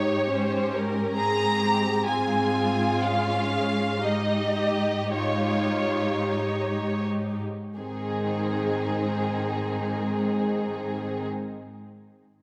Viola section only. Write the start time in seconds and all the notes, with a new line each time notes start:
Already playing: D#4 G4
0.31 C#4
1.17 C4 G#4
2.08 C4 G#4
3.04 C#4
4.03 D#4 G4
5.16 D#4 G4
7.77 D#3 G#3